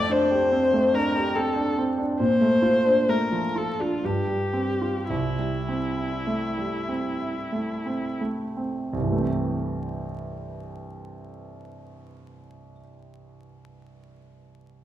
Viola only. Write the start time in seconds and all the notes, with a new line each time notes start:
Already playing: D5
0.12 C5
0.95 A#4
1.35 A4
2.20 C5
3.09 A#4
3.57 A4
3.82 F4
4.05 G4
5.09 E4